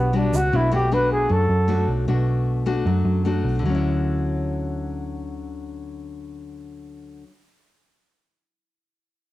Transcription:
Already playing: B1 B2 G3 B3 D4 F#4
0.13 G3 D4 F#4
0.33 C#2 F#4, shaker
0.52 B1 B2 A3 D4 E4 F#4
0.72 A3 D4 F#4 G4
0.92 A3 D4 F#4 B4
1.12 G#4
1.29 F#2 F#3 A4
1.49 F#2
1.68 A3 D4 F#4
1.88 B1
2.08 B1 B2 A3 D4 F#4
2.66 A3 D4 F#4
2.86 F#2 F#3
3.05 F#2
3.25 A3 D4 F#4
3.44 B1
3.59 D2 D3
3.66 F#3
3.70 C#4
3.75 E4

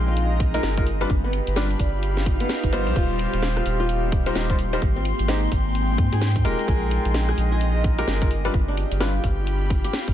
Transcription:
Already playing: A#1 G#3 C4 D#4 F4 A#4 D#5 A#5
0.08 F4
0.17 closed hi-hat
0.40 kick, open hi-hat
0.54 G#3 D#4 F4 A#4, closed hi-hat
0.63 G1 G#3 D#4 F4 A#4, snare
0.77 G#3 D#4 F4 A#4, kick, closed hi-hat
0.87 B3 D4 G4, open hi-hat
1.01 G3 D4 F4 B4, closed hi-hat
1.10 G1 B5, kick, closed hi-hat
1.24 B3
1.33 open hi-hat
1.38 F5
1.47 G1, closed hi-hat
1.56 G3 D4 F4 B4, snare
1.70 closed hi-hat
1.80 G1, kick, open hi-hat
2.03 closed hi-hat, swell
2.17 snare
2.26 kick, open hi-hat
2.40 B3, closed hi-hat
2.49 snare
2.64 G1, kick, closed hi-hat
2.73 G3 B3 D#4 F4 C5, cross-stick, open hi-hat
2.87 B1, closed hi-hat
2.96 D#1 A#3 C4 F4, kick, closed hi-hat
3.19 open hi-hat
3.33 D#1, closed hi-hat
3.43 snare
3.57 F4, cross-stick
3.66 D#1, open hi-hat
3.80 F4 C6
3.89 closed hi-hat
4.12 kick, open hi-hat
4.26 G3 D#4 F4 C5, closed hi-hat
4.35 D#1 G3 D#4 F4 C5, snare
4.50 G3 D#4 F4 C5, kick, closed hi-hat
4.59 open hi-hat
4.73 G3 D#4 F4 C5, closed hi-hat
4.82 G#1 G#3 D#4 G4, kick, closed hi-hat
4.96 C4
5.04 G5, open hi-hat
5.19 G#1, closed hi-hat
5.28 G#3 D#4 G4 C5, snare
5.52 G#1, kick, open hi-hat
5.75 closed hi-hat
5.98 G#2, kick, open hi-hat
6.12 G#2 G#4, closed hi-hat
6.22 snare
6.36 kick, closed hi-hat
6.45 D#1 G#3 D#4 F4 G4 A#4, open hi-hat
6.59 closed hi-hat
6.68 A#1 F4 G#4, kick, closed hi-hat
6.91 open hi-hat
6.96 D#5
7.05 A#1, closed hi-hat
7.14 snare
7.29 G#4, cross-stick
7.38 A#1, open hi-hat
7.42 A#5
7.52 G#4
7.61 closed hi-hat
7.84 kick, open hi-hat
7.98 G#3 D#4 F4 G4 A#4, closed hi-hat
8.07 G1 G#3 F4, snare
8.22 G#3 D#4 F4 A#4, kick, closed hi-hat
8.31 B3 D4 G4, open hi-hat
8.45 G3 D4 F4 B4, closed hi-hat
8.54 G1, kick, closed hi-hat
8.68 D4
8.77 open hi-hat
8.91 G1, closed hi-hat
9.01 G3 D4 F4 B4, snare
9.10 F5
9.24 G1 B5, kick, open hi-hat
9.47 closed hi-hat
9.70 kick, open hi-hat
9.84 G4, closed hi-hat
9.93 snare
10.08 G1, kick, closed hi-hat

